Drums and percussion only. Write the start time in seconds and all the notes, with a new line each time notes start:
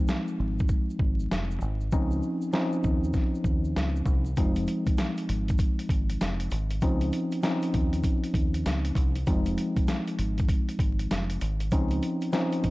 0.08 snare, shaker
0.27 shaker
0.59 kick, shaker
0.68 kick, shaker
0.90 shaker
0.99 kick
1.20 shaker
1.32 snare, shaker
1.51 shaker
1.61 shaker
1.81 shaker
1.92 kick, shaker
2.11 shaker
2.22 shaker
2.42 shaker
2.53 snare, shaker
2.72 shaker
2.83 kick, shaker
3.04 shaker
3.13 kick, snare, shaker
3.35 shaker
3.44 kick, shaker
3.65 shaker
3.76 snare, shaker
3.96 shaker
4.05 kick, shaker
4.25 shaker
4.36 kick, closed hi-hat, shaker
4.56 closed hi-hat, shaker
4.67 closed hi-hat, shaker
4.86 kick, closed hi-hat, shaker
4.98 snare, closed hi-hat, shaker
5.17 closed hi-hat, shaker
5.29 closed hi-hat
5.48 kick, closed hi-hat, shaker
5.58 kick, closed hi-hat, shaker
5.79 closed hi-hat, shaker
5.89 kick, closed hi-hat
6.09 closed hi-hat, shaker
6.21 snare, closed hi-hat, shaker
6.40 closed hi-hat, shaker
6.50 closed hi-hat, shaker
6.70 closed hi-hat, shaker
6.81 kick, closed hi-hat, shaker
7.01 closed hi-hat, shaker
7.12 closed hi-hat, shaker
7.31 closed hi-hat, shaker
7.42 snare, closed hi-hat, shaker
7.62 closed hi-hat, shaker
7.74 kick, closed hi-hat
7.93 closed hi-hat, shaker
8.03 kick, closed hi-hat, shaker
8.24 closed hi-hat, shaker
8.34 kick, closed hi-hat
8.54 closed hi-hat, shaker
8.66 snare, closed hi-hat, shaker
8.85 closed hi-hat, shaker
8.95 kick, closed hi-hat, shaker
9.15 closed hi-hat, shaker
9.26 kick, closed hi-hat, shaker
9.46 closed hi-hat, shaker
9.57 closed hi-hat, shaker
9.76 kick, closed hi-hat, shaker
9.87 snare, closed hi-hat, shaker
10.07 closed hi-hat, shaker
10.19 closed hi-hat
10.38 kick, closed hi-hat, shaker
10.48 kick, closed hi-hat, shaker
10.69 closed hi-hat, shaker
10.79 kick, closed hi-hat
10.99 closed hi-hat, shaker
11.11 snare, closed hi-hat, shaker
11.30 closed hi-hat, shaker
11.40 closed hi-hat, shaker
11.60 closed hi-hat, shaker
11.71 kick, closed hi-hat, shaker
11.91 closed hi-hat, shaker
12.02 closed hi-hat, shaker
12.21 closed hi-hat, shaker
12.32 snare, closed hi-hat, shaker
12.52 closed hi-hat, shaker
12.63 kick, closed hi-hat, shaker